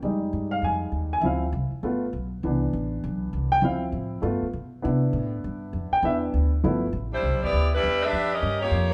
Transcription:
0.02 F2 G3 G#3 D#4
0.33 G2
0.51 F5
0.62 F2 G#5
0.92 D#2
1.13 G#5
1.21 D2 F3 C4 E4 E5
1.26 F5
1.53 C2
1.71 muted upright bass stroke
1.83 G1 A3 B3 F4
2.13 B1
2.43 C2 E3 B3 D4
2.73 A1
3.04 B1
3.33 C2
3.52 G5
3.61 D2 F3 C4 E4 F5
3.92 A2
4.22 G2 A3 B3 F4
4.42 muted upright bass stroke
4.53 B2
4.82 C3 B3 D4 E4
5.13 A2
5.44 G2
5.73 F2
5.91 G5, muted upright bass stroke
6.03 E2 B3 D4 E4 E5
6.34 D2
6.64 G1 F3 A3 B3 E4
6.93 A1
7.13 G3 D4 E4 C5
7.23 C2
7.33 B1
7.43 G1 B3 E4 G4 D5
7.52 D2
7.74 G3 D4 E4 B4
7.84 E2
8.04 D4 G4 B4 E5
8.13 F2
8.33 C#4 G4 A#4 D#5
8.42 G2
8.62 A#3 F4 G4 C#5
8.71 F2
8.90 C#5

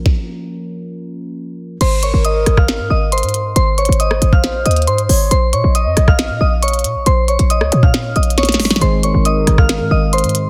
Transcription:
Already playing: F3 A#3 C#4 F4 A#4
0.06 kick, snare
1.81 G#1 C5 C6, closed hi-hat, crash
2.03 A#4 C#5 C#6, closed hi-hat
2.14 G#1
2.25 D#5 D#6, closed hi-hat
2.46 G#1, cross-stick, closed hi-hat
2.57 F5 F6, kick, cross-stick
2.68 snare, closed hi-hat
2.79 G#2
2.90 G#1 D#5 D#6
3.12 C5 C6, closed hi-hat
3.18 closed hi-hat
3.23 G#2, closed hi-hat
3.29 closed hi-hat
3.34 closed hi-hat
3.56 G#1 C5 C6, closed hi-hat
3.78 C5 C#5 C#6, closed hi-hat
3.85 G#1, closed hi-hat
3.93 closed hi-hat
4.00 D#5 D#6, closed hi-hat
4.11 cross-stick
4.22 G#1, closed hi-hat
4.33 F5 F6, kick
4.44 A#1, snare, closed hi-hat
4.65 D#2 D#5 D#6, closed hi-hat
4.71 closed hi-hat
4.76 closed hi-hat
4.82 closed hi-hat
4.87 G#2 C5 C6, closed hi-hat
4.98 closed hi-hat
5.09 G#1 C#5, open hi-hat
5.31 A#1 C5 C6, closed hi-hat
5.53 A#2 C#5 D#5 C#6, closed hi-hat
5.64 A#1
5.75 D#5 D#6, closed hi-hat
5.86 F2
5.97 A#1, cross-stick, closed hi-hat
6.08 F5 F6, kick, cross-stick
6.19 snare, closed hi-hat
6.30 A#2
6.41 A#1 D#5 D#6
6.62 C#5 C#6, closed hi-hat
6.68 closed hi-hat
6.74 closed hi-hat
6.79 closed hi-hat
6.84 A#2, closed hi-hat
6.95 A#1
7.06 A#1 C5 C6, closed hi-hat
7.28 C#5 C#6, closed hi-hat
7.39 A#1, closed hi-hat
7.50 D#5 D#6, closed hi-hat
7.61 C#2, cross-stick
7.72 A#2, closed hi-hat
7.83 F5 F6, kick
7.94 snare, closed hi-hat
8.16 A#1 D#5 D#6, closed hi-hat
8.23 closed hi-hat
8.30 closed hi-hat
8.38 C#5 C#6, snare, closed hi-hat
8.43 snare, closed hi-hat
8.49 snare, closed hi-hat
8.54 snare
8.60 G#1, snare, open hi-hat
8.65 snare
8.71 A#1, snare
8.76 D#3, snare
8.81 G#1 G#3 C4 D#4 G#4 C5 C6, closed hi-hat
9.03 A#4 C#5 C#6, closed hi-hat
9.14 G#1
9.25 D#5 D#6, closed hi-hat
9.47 G#1, cross-stick, closed hi-hat
9.58 F5 F6, kick, cross-stick
9.69 snare, closed hi-hat
9.80 G#2
9.91 G#1 D#5 D#6
10.13 C5 C6, closed hi-hat
10.18 closed hi-hat
10.24 G#2, closed hi-hat
10.29 closed hi-hat
10.35 closed hi-hat

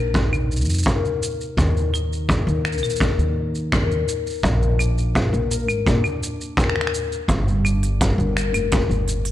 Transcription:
Already playing: A#1 C3 A#3 D#4 A#4
0.14 D#4, kick, shaker
0.33 claves, shaker
0.52 shaker
0.56 shaker
0.61 shaker
0.65 F2, shaker
0.70 shaker
0.74 shaker
0.78 shaker
0.83 A#4, kick, shaker
1.05 shaker
1.23 shaker
1.41 shaker
1.57 D#2 D#3, kick, shaker
1.77 shaker
1.93 D#4, claves, shaker
2.13 shaker
2.29 A#3, kick, shaker
2.47 D#2, shaker
2.65 A#4, finger snap, shaker
2.72 shaker
2.78 shaker
2.82 A#1, claves, shaker
2.90 shaker
2.96 shaker
3.00 D#4, kick
3.18 D#2, shaker
3.55 shaker
3.72 A#4, finger snap, kick, shaker
3.91 shaker
4.08 shaker
4.27 shaker
4.30 shaker
4.32 shaker
4.34 shaker
4.36 shaker
4.38 shaker
4.40 shaker
4.42 A#1 A#2, kick, shaker
4.45 shaker
4.62 shaker
4.79 D4, claves, shaker
4.98 shaker
5.14 A#3, kick, shaker
5.33 A#1, shaker
5.51 A#4, shaker
5.68 G#1, claves, shaker
5.86 A#2 D4, kick, shaker
6.04 claves, shaker
6.23 shaker
6.41 shaker
6.57 A#4, finger snap, kick, shaker
6.64 finger snap
6.70 finger snap
6.76 finger snap
6.81 finger snap
6.87 finger snap
6.94 shaker
7.12 shaker
7.28 G1 G2, kick, open hi-hat, shaker
7.48 shaker
7.65 D4, claves, shaker
7.83 open hi-hat, shaker
8.01 A#3, kick, open hi-hat, shaker
8.18 G1, shaker
8.36 A#4, finger snap, shaker
8.54 F1, open hi-hat, claves, shaker
8.72 D4, kick, open hi-hat, shaker
8.89 G1, shaker
9.08 open hi-hat, shaker
9.25 open hi-hat, shaker

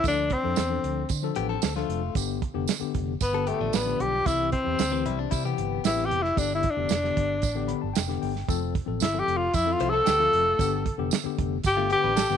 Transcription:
0.04 D2 F3 D4 A4, kick, closed hi-hat, tambourine
0.08 D4
0.30 C4, kick, closed hi-hat
0.43 F2 F3 D4 A4
0.56 E2, snare, closed hi-hat, tambourine
0.69 F3 D4 A4
0.84 D2, closed hi-hat
1.09 D3, kick, closed hi-hat, tambourine
1.23 F3 D4 A4
1.35 A1 B3 G4, closed hi-hat
1.49 C4 A4
1.62 D2, snare, closed hi-hat, tambourine
1.76 F3 A3 D4 F4 A4, snare
1.89 F1, closed hi-hat
2.15 G1 D3 B3 G4, kick, closed hi-hat, tambourine
2.42 kick, closed hi-hat
2.54 F1 D3 B3 G4
2.68 snare, closed hi-hat, tambourine
2.79 D3 B3 G4, muted fingered electric bass stroke
2.95 F1, kick, closed hi-hat
3.21 G1 B3, kick, closed hi-hat, tambourine
3.33 D3 B3 G4 A4
3.47 A3 B3 G4, closed hi-hat
3.60 A1 F3 D4
3.73 A1 B3, snare, closed hi-hat, tambourine
3.86 D3 B3 G4
4.00 B1 G4, closed hi-hat
4.25 C2 E3 C4 E4 G4, kick, closed hi-hat, tambourine
4.52 C4, kick, closed hi-hat
4.64 E2 E3 C4 G4
4.79 D2, snare, closed hi-hat, tambourine
4.90 E3 C4 G4
5.06 C2 G3 E4, closed hi-hat
5.19 D4
5.31 C3 G3 E4, kick, closed hi-hat, tambourine
5.44 C3 E3 B3 G4
5.58 G1, closed hi-hat
5.84 A1 E4, snare, closed hi-hat, tambourine
5.96 E3 C4 G4, snare
6.06 G4
6.11 F1, closed hi-hat
6.23 E4, snare
6.36 G1 D3 B3 D4 G4, kick, closed hi-hat, tambourine
6.55 E4
6.63 kick, closed hi-hat
6.71 D4
6.77 F1 D3 B3 G4
6.89 F1, snare, closed hi-hat, tambourine
7.03 D3 B3 G4, snare
7.17 G1, kick, closed hi-hat
7.42 A1, kick, closed hi-hat, tambourine
7.55 D3 B3 G4
7.68 B5, closed hi-hat
7.81 G1 A5
7.93 F1 G5, snare, closed hi-hat, tambourine
8.08 D3 B3 G4, snare
8.22 G1 G5, open hi-hat
8.36 snare
8.48 F1 F3 C4 A4, kick, closed hi-hat, tambourine
8.75 kick, closed hi-hat
8.86 A1 F3 C4 A4
9.00 G1 E4, snare, closed hi-hat, tambourine
9.14 F3 C4 A4
9.19 G4
9.28 F1, closed hi-hat
9.37 F4
9.54 F2 E4, kick, closed hi-hat, tambourine
9.65 F3 C4 A4
9.72 F4
9.80 C2 E4 C5, closed hi-hat
9.90 A4
9.94 C4
10.06 D2 B3 G4, snare, closed hi-hat, tambourine
10.19 F3 A3 C4 F4 A4, snare
10.33 F1, closed hi-hat
10.59 G1 D3 B3 G4, kick, closed hi-hat, tambourine
10.86 kick, closed hi-hat
10.98 F1 D3 B3 G4
11.11 snare, closed hi-hat, tambourine
11.24 D3 B3 G4, muted fingered electric bass stroke
11.38 F1, kick, closed hi-hat
11.64 G1 G4, kick, closed hi-hat, tambourine
11.77 D3 A3 B3 F4 G4
11.90 B3 G4, closed hi-hat
12.03 A1 D4 B4
12.16 A4, snare, closed hi-hat, tambourine
12.29 G1 D3 B3 G4, snare

